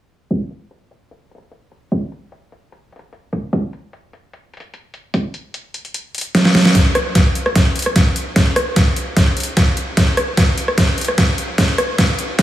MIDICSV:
0, 0, Header, 1, 2, 480
1, 0, Start_track
1, 0, Tempo, 402685
1, 366, Time_signature, 4, 2, 24, 8
1, 14808, End_track
2, 0, Start_track
2, 0, Title_t, "Drums"
2, 365, Note_on_c, 9, 36, 102
2, 365, Note_on_c, 9, 42, 75
2, 484, Note_off_c, 9, 42, 0
2, 485, Note_off_c, 9, 36, 0
2, 605, Note_on_c, 9, 42, 53
2, 724, Note_off_c, 9, 42, 0
2, 845, Note_on_c, 9, 42, 78
2, 964, Note_off_c, 9, 42, 0
2, 1085, Note_on_c, 9, 42, 49
2, 1205, Note_off_c, 9, 42, 0
2, 1325, Note_on_c, 9, 42, 77
2, 1444, Note_off_c, 9, 42, 0
2, 1565, Note_on_c, 9, 42, 47
2, 1608, Note_off_c, 9, 42, 0
2, 1608, Note_on_c, 9, 42, 64
2, 1646, Note_off_c, 9, 42, 0
2, 1646, Note_on_c, 9, 42, 76
2, 1765, Note_off_c, 9, 42, 0
2, 1805, Note_on_c, 9, 42, 74
2, 1924, Note_off_c, 9, 42, 0
2, 2045, Note_on_c, 9, 42, 53
2, 2164, Note_off_c, 9, 42, 0
2, 2285, Note_on_c, 9, 42, 76
2, 2286, Note_on_c, 9, 36, 110
2, 2404, Note_off_c, 9, 42, 0
2, 2405, Note_off_c, 9, 36, 0
2, 2525, Note_on_c, 9, 42, 51
2, 2645, Note_off_c, 9, 42, 0
2, 2765, Note_on_c, 9, 42, 75
2, 2885, Note_off_c, 9, 42, 0
2, 3006, Note_on_c, 9, 42, 50
2, 3125, Note_off_c, 9, 42, 0
2, 3245, Note_on_c, 9, 42, 72
2, 3365, Note_off_c, 9, 42, 0
2, 3486, Note_on_c, 9, 42, 44
2, 3528, Note_off_c, 9, 42, 0
2, 3528, Note_on_c, 9, 42, 59
2, 3566, Note_off_c, 9, 42, 0
2, 3566, Note_on_c, 9, 42, 78
2, 3685, Note_off_c, 9, 42, 0
2, 3726, Note_on_c, 9, 42, 70
2, 3846, Note_off_c, 9, 42, 0
2, 3966, Note_on_c, 9, 36, 59
2, 3966, Note_on_c, 9, 42, 51
2, 4085, Note_off_c, 9, 36, 0
2, 4085, Note_off_c, 9, 42, 0
2, 4206, Note_on_c, 9, 36, 120
2, 4206, Note_on_c, 9, 42, 75
2, 4325, Note_off_c, 9, 36, 0
2, 4325, Note_off_c, 9, 42, 0
2, 4446, Note_on_c, 9, 42, 50
2, 4565, Note_off_c, 9, 42, 0
2, 4687, Note_on_c, 9, 42, 70
2, 4806, Note_off_c, 9, 42, 0
2, 4927, Note_on_c, 9, 42, 49
2, 5046, Note_off_c, 9, 42, 0
2, 5166, Note_on_c, 9, 42, 71
2, 5285, Note_off_c, 9, 42, 0
2, 5406, Note_on_c, 9, 42, 45
2, 5448, Note_off_c, 9, 42, 0
2, 5448, Note_on_c, 9, 42, 60
2, 5486, Note_off_c, 9, 42, 0
2, 5486, Note_on_c, 9, 42, 72
2, 5605, Note_off_c, 9, 42, 0
2, 5646, Note_on_c, 9, 42, 72
2, 5765, Note_off_c, 9, 42, 0
2, 5886, Note_on_c, 9, 42, 52
2, 6005, Note_off_c, 9, 42, 0
2, 6125, Note_on_c, 9, 42, 74
2, 6126, Note_on_c, 9, 36, 109
2, 6244, Note_off_c, 9, 42, 0
2, 6245, Note_off_c, 9, 36, 0
2, 6365, Note_on_c, 9, 42, 47
2, 6485, Note_off_c, 9, 42, 0
2, 6605, Note_on_c, 9, 42, 69
2, 6724, Note_off_c, 9, 42, 0
2, 6845, Note_on_c, 9, 42, 48
2, 6964, Note_off_c, 9, 42, 0
2, 6971, Note_on_c, 9, 42, 32
2, 7085, Note_off_c, 9, 42, 0
2, 7085, Note_on_c, 9, 42, 70
2, 7204, Note_off_c, 9, 42, 0
2, 7325, Note_on_c, 9, 42, 43
2, 7367, Note_off_c, 9, 42, 0
2, 7367, Note_on_c, 9, 42, 58
2, 7406, Note_off_c, 9, 42, 0
2, 7406, Note_on_c, 9, 42, 69
2, 7525, Note_off_c, 9, 42, 0
2, 7566, Note_on_c, 9, 38, 55
2, 7566, Note_on_c, 9, 42, 70
2, 7685, Note_off_c, 9, 38, 0
2, 7685, Note_off_c, 9, 42, 0
2, 7691, Note_on_c, 9, 38, 58
2, 7806, Note_off_c, 9, 38, 0
2, 7806, Note_on_c, 9, 36, 61
2, 7806, Note_on_c, 9, 38, 83
2, 7806, Note_on_c, 9, 42, 48
2, 7925, Note_off_c, 9, 36, 0
2, 7925, Note_off_c, 9, 38, 0
2, 7925, Note_off_c, 9, 42, 0
2, 7931, Note_on_c, 9, 38, 78
2, 8046, Note_off_c, 9, 38, 0
2, 8046, Note_on_c, 9, 36, 96
2, 8046, Note_on_c, 9, 38, 50
2, 8046, Note_on_c, 9, 42, 82
2, 8165, Note_off_c, 9, 36, 0
2, 8165, Note_off_c, 9, 38, 0
2, 8165, Note_off_c, 9, 42, 0
2, 8286, Note_on_c, 9, 37, 79
2, 8286, Note_on_c, 9, 42, 54
2, 8405, Note_off_c, 9, 37, 0
2, 8405, Note_off_c, 9, 42, 0
2, 8526, Note_on_c, 9, 36, 95
2, 8526, Note_on_c, 9, 38, 46
2, 8526, Note_on_c, 9, 42, 81
2, 8645, Note_off_c, 9, 36, 0
2, 8645, Note_off_c, 9, 38, 0
2, 8645, Note_off_c, 9, 42, 0
2, 8766, Note_on_c, 9, 42, 55
2, 8885, Note_off_c, 9, 42, 0
2, 8891, Note_on_c, 9, 37, 58
2, 9006, Note_on_c, 9, 36, 90
2, 9006, Note_on_c, 9, 38, 49
2, 9006, Note_on_c, 9, 42, 79
2, 9011, Note_off_c, 9, 37, 0
2, 9125, Note_off_c, 9, 36, 0
2, 9125, Note_off_c, 9, 38, 0
2, 9125, Note_off_c, 9, 42, 0
2, 9245, Note_on_c, 9, 42, 50
2, 9287, Note_off_c, 9, 42, 0
2, 9287, Note_on_c, 9, 42, 64
2, 9325, Note_off_c, 9, 42, 0
2, 9325, Note_on_c, 9, 42, 77
2, 9371, Note_on_c, 9, 37, 51
2, 9444, Note_off_c, 9, 42, 0
2, 9485, Note_on_c, 9, 38, 51
2, 9485, Note_on_c, 9, 42, 77
2, 9486, Note_on_c, 9, 36, 100
2, 9490, Note_off_c, 9, 37, 0
2, 9604, Note_off_c, 9, 38, 0
2, 9604, Note_off_c, 9, 42, 0
2, 9605, Note_off_c, 9, 36, 0
2, 9725, Note_on_c, 9, 42, 58
2, 9845, Note_off_c, 9, 42, 0
2, 9965, Note_on_c, 9, 38, 54
2, 9965, Note_on_c, 9, 42, 80
2, 9966, Note_on_c, 9, 36, 96
2, 10084, Note_off_c, 9, 38, 0
2, 10084, Note_off_c, 9, 42, 0
2, 10085, Note_off_c, 9, 36, 0
2, 10205, Note_on_c, 9, 37, 79
2, 10205, Note_on_c, 9, 42, 53
2, 10325, Note_off_c, 9, 37, 0
2, 10325, Note_off_c, 9, 42, 0
2, 10445, Note_on_c, 9, 38, 52
2, 10445, Note_on_c, 9, 42, 75
2, 10446, Note_on_c, 9, 36, 98
2, 10565, Note_off_c, 9, 36, 0
2, 10565, Note_off_c, 9, 38, 0
2, 10565, Note_off_c, 9, 42, 0
2, 10686, Note_on_c, 9, 42, 53
2, 10805, Note_off_c, 9, 42, 0
2, 10925, Note_on_c, 9, 36, 96
2, 10925, Note_on_c, 9, 38, 51
2, 10925, Note_on_c, 9, 42, 80
2, 11044, Note_off_c, 9, 38, 0
2, 11044, Note_off_c, 9, 42, 0
2, 11045, Note_off_c, 9, 36, 0
2, 11165, Note_on_c, 9, 42, 48
2, 11208, Note_off_c, 9, 42, 0
2, 11208, Note_on_c, 9, 42, 66
2, 11246, Note_off_c, 9, 42, 0
2, 11246, Note_on_c, 9, 42, 77
2, 11365, Note_off_c, 9, 42, 0
2, 11405, Note_on_c, 9, 36, 97
2, 11405, Note_on_c, 9, 38, 56
2, 11405, Note_on_c, 9, 42, 74
2, 11525, Note_off_c, 9, 36, 0
2, 11525, Note_off_c, 9, 38, 0
2, 11525, Note_off_c, 9, 42, 0
2, 11645, Note_on_c, 9, 42, 55
2, 11764, Note_off_c, 9, 42, 0
2, 11886, Note_on_c, 9, 36, 97
2, 11886, Note_on_c, 9, 38, 56
2, 11886, Note_on_c, 9, 42, 79
2, 12005, Note_off_c, 9, 36, 0
2, 12005, Note_off_c, 9, 38, 0
2, 12005, Note_off_c, 9, 42, 0
2, 12126, Note_on_c, 9, 37, 72
2, 12126, Note_on_c, 9, 42, 50
2, 12245, Note_off_c, 9, 37, 0
2, 12245, Note_off_c, 9, 42, 0
2, 12366, Note_on_c, 9, 36, 98
2, 12366, Note_on_c, 9, 38, 59
2, 12366, Note_on_c, 9, 42, 76
2, 12485, Note_off_c, 9, 36, 0
2, 12485, Note_off_c, 9, 38, 0
2, 12485, Note_off_c, 9, 42, 0
2, 12606, Note_on_c, 9, 42, 51
2, 12725, Note_off_c, 9, 42, 0
2, 12732, Note_on_c, 9, 37, 55
2, 12846, Note_on_c, 9, 36, 97
2, 12846, Note_on_c, 9, 38, 60
2, 12846, Note_on_c, 9, 42, 74
2, 12851, Note_off_c, 9, 37, 0
2, 12965, Note_off_c, 9, 36, 0
2, 12965, Note_off_c, 9, 38, 0
2, 12965, Note_off_c, 9, 42, 0
2, 13086, Note_on_c, 9, 42, 46
2, 13128, Note_off_c, 9, 42, 0
2, 13128, Note_on_c, 9, 42, 61
2, 13166, Note_off_c, 9, 42, 0
2, 13166, Note_on_c, 9, 42, 76
2, 13212, Note_on_c, 9, 37, 50
2, 13285, Note_off_c, 9, 42, 0
2, 13326, Note_on_c, 9, 36, 100
2, 13326, Note_on_c, 9, 38, 63
2, 13326, Note_on_c, 9, 42, 71
2, 13331, Note_off_c, 9, 37, 0
2, 13445, Note_off_c, 9, 36, 0
2, 13445, Note_off_c, 9, 38, 0
2, 13445, Note_off_c, 9, 42, 0
2, 13566, Note_on_c, 9, 42, 52
2, 13685, Note_off_c, 9, 42, 0
2, 13805, Note_on_c, 9, 38, 67
2, 13805, Note_on_c, 9, 42, 77
2, 13806, Note_on_c, 9, 36, 94
2, 13924, Note_off_c, 9, 38, 0
2, 13924, Note_off_c, 9, 42, 0
2, 13925, Note_off_c, 9, 36, 0
2, 14046, Note_on_c, 9, 37, 77
2, 14046, Note_on_c, 9, 42, 49
2, 14165, Note_off_c, 9, 37, 0
2, 14165, Note_off_c, 9, 42, 0
2, 14285, Note_on_c, 9, 38, 65
2, 14285, Note_on_c, 9, 42, 70
2, 14286, Note_on_c, 9, 36, 100
2, 14405, Note_off_c, 9, 36, 0
2, 14405, Note_off_c, 9, 38, 0
2, 14405, Note_off_c, 9, 42, 0
2, 14526, Note_on_c, 9, 42, 49
2, 14645, Note_off_c, 9, 42, 0
2, 14765, Note_on_c, 9, 38, 67
2, 14765, Note_on_c, 9, 42, 74
2, 14766, Note_on_c, 9, 36, 96
2, 14808, Note_off_c, 9, 36, 0
2, 14808, Note_off_c, 9, 38, 0
2, 14808, Note_off_c, 9, 42, 0
2, 14808, End_track
0, 0, End_of_file